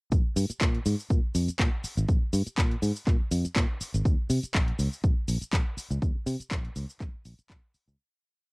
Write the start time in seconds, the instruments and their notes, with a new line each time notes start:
0.12 fingered electric bass A#1, kick, closed hi-hat, shaker
0.36 fingered electric bass G2, open hi-hat, shaker
0.50 muted fingered electric bass stroke, closed hi-hat, shaker
0.61 fingered electric bass A#2, kick, clap, closed hi-hat, shaker
0.75 closed hi-hat
0.86 fingered electric bass G#2, open hi-hat, shaker
0.99 shaker
1.10 fingered electric bass A#2, kick, closed hi-hat, shaker
1.35 fingered electric bass F2, open hi-hat, shaker
1.48 muted fingered electric bass stroke, closed hi-hat, shaker
1.59 fingered electric bass A#2, kick, clap, closed hi-hat, shaker
1.84 muted fingered electric bass stroke, open hi-hat, shaker
1.97 fingered electric bass G#1, closed hi-hat, shaker
2.08 fingered electric bass A#1, kick, closed hi-hat, shaker
2.22 muted fingered electric bass stroke
2.33 fingered electric bass G2, open hi-hat, shaker
2.46 muted fingered electric bass stroke, closed hi-hat, shaker
2.58 fingered electric bass A#2, kick, clap, closed hi-hat, shaker
2.71 closed hi-hat
2.82 fingered electric bass G#2, open hi-hat, shaker
2.96 shaker
3.07 fingered electric bass A#2, kick, clap, closed hi-hat, shaker
3.20 muted fingered electric bass stroke
3.31 fingered electric bass F2, open hi-hat, shaker
3.45 muted fingered electric bass stroke, closed hi-hat, shaker
3.56 fingered electric bass A#2, kick, clap, closed hi-hat, shaker
3.81 muted fingered electric bass stroke, open hi-hat, shaker
3.94 fingered electric bass G#1, closed hi-hat, shaker
4.05 fingered electric bass D#2, kick, closed hi-hat, shaker
4.30 fingered electric bass C3, open hi-hat, shaker
4.43 muted fingered electric bass stroke, closed hi-hat, shaker
4.54 fingered electric bass A#1, kick, clap, closed hi-hat, shaker
4.68 closed hi-hat
4.79 fingered electric bass C#2, open hi-hat, shaker
4.93 shaker
5.04 fingered electric bass A#1, kick, closed hi-hat, shaker
5.28 fingered electric bass A#1, open hi-hat, shaker
5.41 muted fingered electric bass stroke, closed hi-hat, shaker
5.53 fingered electric bass A#1, kick, clap, closed hi-hat, shaker
5.77 muted fingered electric bass stroke, open hi-hat, shaker
5.91 fingered electric bass C#2, closed hi-hat, shaker
6.02 fingered electric bass D#2, kick, closed hi-hat, shaker
6.15 muted fingered electric bass stroke
6.26 fingered electric bass C3, open hi-hat, shaker
6.40 muted fingered electric bass stroke, closed hi-hat, shaker
6.51 fingered electric bass A#1, kick, clap, closed hi-hat, shaker
6.65 closed hi-hat
6.76 fingered electric bass C#2, open hi-hat, shaker
6.90 shaker
7.00 fingered electric bass A#1, kick, clap, closed hi-hat, shaker
7.14 muted fingered electric bass stroke
7.25 fingered electric bass A#1, open hi-hat, shaker
7.39 muted fingered electric bass stroke, closed hi-hat, shaker
7.50 fingered electric bass A#1, kick, clap, closed hi-hat, shaker
7.74 muted fingered electric bass stroke, open hi-hat, shaker
7.88 fingered electric bass C#2, closed hi-hat, shaker